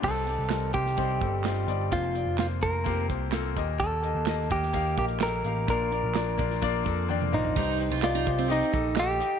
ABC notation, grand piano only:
X:1
M:4/4
L:1/8
Q:1/4=128
K:Cdor
V:1 name="Grand piano"
[G,CEc] [G,CEG] [G,CEB] [G,CEc] [G,CEc] [G,CEA] [G,CEF] [G,CEd] | [B,CFc] [B,CFd] [B,CFc] [B,CFc] [B,CFG] [B,CFc] [B,CFA] [B,EGe]- | [B,EGe] [B,EGe] [B,EGe] [B,EGe] [B,EGf] [B,EGB] [B,EGA] [B,EGf] | [B,DFd] [B,DFd] [B,DFd] [B,DFd] [B,DFd] [B,DFAb] [B,DFdg] [B,DFcf] |
[EGc] [EGc] [EGd] [EGc] [EGe] [EGA] [EGA] [EGe] |]
V:2 name="Grand piano" clef=bass
G,,3 z4 z | C,3 z4 B,,- | B,,2 z6 | z8 |
G,,3 z4 z |]